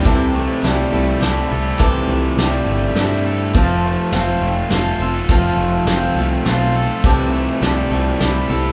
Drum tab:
HH |x-x-x-|x-x-x-|x-x-x-|x-x-x-|
SD |--o-o-|--o-o-|--o-o-|--o-o-|
BD |o-----|o-----|o-----|o-----|

HH |x-x-x-|
SD |--o-o-|
BD |o-----|